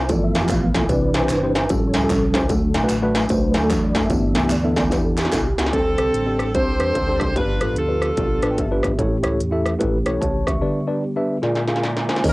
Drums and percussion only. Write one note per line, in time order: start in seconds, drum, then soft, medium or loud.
0.09 kick loud
0.09 closed hi-hat medium
0.09 tambourine medium
0.35 snare loud
0.35 closed hi-hat medium
0.35 tambourine medium
0.48 kick medium
0.48 clap medium
0.48 closed hi-hat medium
0.48 tambourine medium
0.75 kick medium
0.75 snare loud
0.75 closed hi-hat medium
0.75 tambourine soft
0.89 kick loud
0.89 closed hi-hat medium
0.89 tambourine medium
1.14 snare loud
1.14 closed hi-hat medium
1.14 tambourine medium
1.29 clap loud
1.29 closed hi-hat medium
1.29 tambourine loud
1.55 snare loud
1.55 closed hi-hat medium
1.55 tambourine medium
1.69 kick loud
1.69 closed hi-hat medium
1.69 tambourine medium
1.94 snare loud
1.94 closed hi-hat medium
1.94 tambourine medium
2.10 kick medium
2.10 clap medium
2.10 closed hi-hat medium
2.10 tambourine medium
2.34 kick medium
2.34 snare loud
2.34 closed hi-hat medium
2.34 tambourine soft
2.49 kick loud
2.49 closed hi-hat medium
2.49 tambourine medium
2.74 snare loud
2.74 closed hi-hat medium
2.74 tambourine medium
2.89 clap loud
2.89 closed hi-hat medium
2.89 tambourine medium
3.15 snare loud
3.15 closed hi-hat medium
3.15 tambourine medium
3.29 kick loud
3.29 closed hi-hat medium
3.29 tambourine medium
3.54 snare loud
3.54 closed hi-hat medium
3.54 tambourine medium
3.70 kick medium
3.70 clap medium
3.70 closed hi-hat medium
3.70 tambourine loud
3.95 kick medium
3.95 snare loud
3.95 closed hi-hat medium
3.95 tambourine medium
4.10 kick loud
4.10 closed hi-hat medium
4.10 tambourine medium
4.35 snare loud
4.35 closed hi-hat medium
4.35 tambourine medium
4.50 clap loud
4.50 closed hi-hat medium
4.50 tambourine medium
4.76 kick medium
4.76 snare loud
4.76 closed hi-hat medium
4.76 tambourine medium
4.91 kick loud
4.91 snare medium
4.91 closed hi-hat medium
4.91 tambourine medium
5.17 snare medium
5.17 clap medium
5.17 closed hi-hat medium
5.17 tambourine medium
5.25 snare medium
5.32 kick medium
5.32 snare medium
5.32 clap medium
5.32 closed hi-hat medium
5.32 tambourine medium
5.58 snare loud
5.58 closed hi-hat medium
5.58 tambourine soft
5.66 snare medium
5.73 kick medium
5.73 closed hi-hat medium
5.98 cross-stick loud
5.98 closed hi-hat medium
6.14 closed hi-hat medium
6.39 cross-stick medium
6.39 closed hi-hat medium
6.55 kick loud
6.55 closed hi-hat medium
6.80 cross-stick medium
6.80 closed hi-hat medium
6.95 kick medium
6.95 closed hi-hat medium
7.20 kick medium
7.20 cross-stick loud
7.20 closed hi-hat medium
7.36 kick loud
7.36 closed hi-hat medium
7.61 cross-stick loud
7.61 closed hi-hat medium
7.76 closed hi-hat medium
8.02 cross-stick medium
8.02 closed hi-hat medium
8.17 kick medium
8.17 closed hi-hat medium
8.42 cross-stick medium
8.42 closed hi-hat medium
8.58 kick medium
8.58 closed hi-hat medium
8.83 kick medium
8.83 cross-stick loud
8.83 closed hi-hat medium
8.99 kick medium
8.99 closed hi-hat medium
9.23 cross-stick loud
9.23 closed hi-hat medium
9.40 closed hi-hat medium
9.66 cross-stick medium
9.66 closed hi-hat medium
9.81 kick medium
9.81 closed hi-hat medium
10.06 cross-stick medium
10.06 closed hi-hat medium
10.22 kick medium
10.22 closed hi-hat medium
10.47 kick medium
10.47 cross-stick loud
10.47 closed hi-hat medium
11.43 snare soft
11.55 snare soft
11.68 snare medium
11.76 snare medium
11.83 snare medium
11.97 snare medium
12.09 snare medium
12.16 snare medium
12.24 kick loud
12.24 crash loud
12.24 ride medium